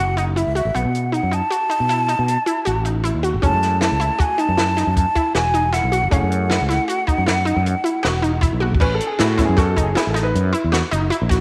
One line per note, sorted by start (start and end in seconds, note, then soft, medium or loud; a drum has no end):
0.00 0.42 F#1 medium
0.00 0.15 F#4 medium
0.00 0.18 F#5 medium
0.17 0.34 D#4 medium
0.17 0.25 F#5 medium
0.17 closed hi-hat soft
0.36 0.53 E4 medium
0.36 0.55 E5 medium
0.36 closed hi-hat medium
0.47 0.64 C#2 medium
0.55 0.72 F#4 medium
0.55 0.76 E5 medium
0.55 closed hi-hat soft
0.65 0.74 A1 medium
0.75 0.84 B1 medium
0.75 1.09 B3 medium
0.75 1.13 F#5 medium
0.75 closed hi-hat medium
0.85 1.20 B2 medium
0.95 closed hi-hat soft
1.12 1.30 D#4 medium
1.12 1.36 F#5 medium
1.12 closed hi-hat medium
1.23 1.40 F#2 medium
1.31 1.49 D#4 medium
1.31 2.87 A5 medium
1.31 closed hi-hat soft
1.51 1.68 F#4 medium
1.51 closed hi-hat medium
1.70 1.87 D#4 medium
1.70 closed hi-hat soft
1.80 2.15 B2 medium
1.89 2.07 E4 medium
1.89 closed hi-hat medium
2.08 2.43 D#4 medium
2.08 closed hi-hat soft
2.19 2.36 B2 medium
2.28 closed hi-hat medium
2.46 2.64 E4 medium
2.46 closed hi-hat soft
2.65 3.11 A1 medium
2.65 2.83 F#4 medium
2.65 closed hi-hat medium
2.85 3.02 D#4 medium
2.85 closed hi-hat medium
3.04 3.21 E4 medium
3.04 closed hi-hat medium
3.14 3.32 D#2 medium
3.23 3.41 F#4 medium
3.23 closed hi-hat medium
3.34 3.43 G#1 medium
3.42 3.52 F#1 medium
3.42 6.09 G#3 medium
3.42 6.08 A3 soft
3.42 3.77 C#4 medium
3.42 6.08 C#4 soft
3.42 6.08 E4 soft
3.42 3.79 A5 medium
3.42 kick medium
3.42 closed hi-hat medium
3.53 3.88 F#2 medium
3.63 snare soft
3.63 closed hi-hat medium
3.81 3.98 E4 medium
3.81 4.23 A5 medium
3.81 snare medium
3.81 closed hi-hat medium
3.92 4.09 C#2 medium
4.00 4.17 E4 medium
4.00 closed hi-hat medium
4.19 4.36 F#4 medium
4.19 4.42 G#5 medium
4.19 kick medium
4.19 closed hi-hat medium
4.38 4.56 D#4 medium
4.38 4.97 A5 medium
4.38 closed hi-hat medium
4.49 4.83 F#2 medium
4.57 4.75 E4 medium
4.57 snare medium
4.57 closed hi-hat medium
4.77 5.11 D#4 medium
4.77 snare soft
4.77 closed hi-hat soft
4.87 5.05 F#2 medium
4.97 5.33 A5 medium
4.97 kick medium
4.97 closed hi-hat medium
5.15 5.33 E4 medium
5.15 kick medium
5.15 closed hi-hat soft
5.35 5.79 E1 medium
5.35 5.52 F#4 medium
5.35 5.75 G#5 medium
5.35 snare medium
5.35 closed hi-hat medium
5.54 5.71 D#4 medium
5.54 closed hi-hat soft
5.73 5.90 E4 medium
5.73 6.11 F#5 medium
5.73 snare soft
5.73 closed hi-hat medium
5.84 6.01 B1 medium
5.92 6.09 F#4 medium
5.92 closed hi-hat medium
6.03 6.12 F#1 medium
6.10 6.21 F#1 medium
6.10 8.76 A3 medium
6.10 6.46 C#4 medium
6.10 8.77 C#4 soft
6.10 8.77 E4 soft
6.10 8.78 G#4 medium
6.10 8.38 F#5 medium
6.10 kick medium
6.10 closed hi-hat medium
6.23 6.57 F#2 medium
6.32 closed hi-hat medium
6.50 6.67 E4 medium
6.50 snare medium
6.50 closed hi-hat medium
6.61 6.78 C#2 medium
6.69 6.86 E4 medium
6.69 snare soft
6.69 closed hi-hat medium
6.88 7.05 F#4 medium
6.88 closed hi-hat medium
7.07 7.24 D#4 medium
7.07 kick medium
7.07 closed hi-hat soft
7.18 7.53 F#2 medium
7.26 7.44 E4 medium
7.26 snare medium
7.26 closed hi-hat medium
7.45 7.80 D#4 medium
7.45 closed hi-hat medium
7.56 7.74 F#2 medium
7.66 closed hi-hat medium
7.84 8.01 E4 medium
7.84 closed hi-hat soft
8.03 8.48 E1 medium
8.03 8.20 F#4 medium
8.03 snare medium
8.03 closed hi-hat medium
8.22 8.40 D#4 medium
8.22 closed hi-hat medium
8.41 8.59 E4 medium
8.41 kick loud
8.41 closed hi-hat medium
8.53 8.70 B1 medium
8.60 8.78 F#4 medium
8.60 high tom medium
8.72 8.80 G#1 medium
8.72 kick medium
8.80 8.99 A1 medium
8.80 9.14 C#4 medium
8.80 8.93 B4 medium
8.80 kick loud
8.80 crash medium
8.95 9.06 A4 medium
9.00 closed hi-hat medium
9.07 9.20 G#4 medium
9.19 9.46 A2 medium
9.19 9.36 E4 medium
9.19 9.43 F#4 medium
9.19 snare medium
9.19 closed hi-hat medium
9.38 9.93 F#3 soft
9.38 9.94 B3 soft
9.38 9.94 C#4 soft
9.38 9.55 E4 medium
9.38 kick medium
9.38 snare soft
9.38 closed hi-hat medium
9.45 9.75 F#2 medium
9.45 9.58 G#4 medium
9.57 9.74 F#4 medium
9.57 9.85 A4 medium
9.57 kick loud
9.57 snare soft
9.57 closed hi-hat medium
9.76 9.95 F#1 medium
9.76 9.94 D#4 medium
9.76 kick medium
9.76 closed hi-hat medium
9.83 10.10 G#4 medium
9.95 10.13 E4 medium
9.95 snare medium
9.95 closed hi-hat medium
10.07 10.33 A1 medium
10.07 10.22 A4 medium
10.14 10.49 D#4 medium
10.14 snare soft
10.14 closed hi-hat medium
10.23 10.58 B4 medium
10.35 10.52 F#2 medium
10.35 closed hi-hat medium
10.53 10.70 E4 medium
10.53 closed hi-hat soft
10.64 10.81 E2 medium
10.72 10.89 F#4 medium
10.72 snare medium
10.72 closed hi-hat medium
10.91 11.10 F#1 medium
10.91 11.09 D#4 medium
10.91 closed hi-hat medium
11.10 11.28 E4 medium
11.10 closed hi-hat medium
11.22 11.41 A#1 medium
11.29 11.41 F#4 medium
11.29 kick medium
11.29 snare soft
11.29 closed hi-hat medium